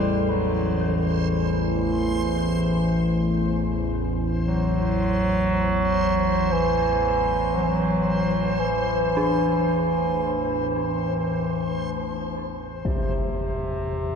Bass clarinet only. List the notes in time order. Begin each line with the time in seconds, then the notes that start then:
Already playing: G3
0.30 F#3
1.36 E3
4.47 F#3
6.53 E3
7.56 F#3
7.64 E3
7.69 F#3
8.60 E3
12.84 C3